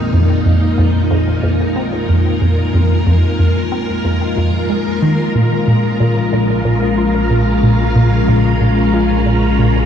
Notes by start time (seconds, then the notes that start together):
Already playing: A#2 G#3 D#4 F4 A#4 F5
0.13 F2
0.46 F2
0.78 F2
1.11 F2
1.43 F2
1.76 C4
2.09 F2
2.42 F2
2.74 F2
3.07 F2
3.39 F2
3.72 C4
4.05 F2
4.37 F2
4.70 G#3
5.02 D#3
5.35 A#1 A#2 A#5
5.64 A#2 C#4
6.00 A#2
6.33 A#2
6.65 A#2
6.87 F5
6.98 F4
7.30 A#2
7.63 A#2
7.95 A#2
8.28 A#2
8.61 A#2
8.94 F4
9.26 A#2
9.59 A#2